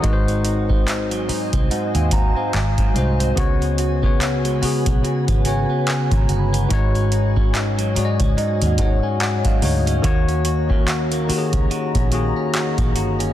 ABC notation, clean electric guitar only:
X:1
M:4/4
L:1/16
Q:"Swing 16ths" 1/4=72
K:Abdor
V:1 name="Clean electric guitar"
[A,,E] =C E C E G, E C [A,,E] C E C A,, G, E C | [D,G] C G C G A, G C [D,G] C G C2 A, G C | [A,,E] D E D E G, E D [A,,E] D E D E G, E D | [E,G] D G D G B, G D [E,G] D G D G B, G D |]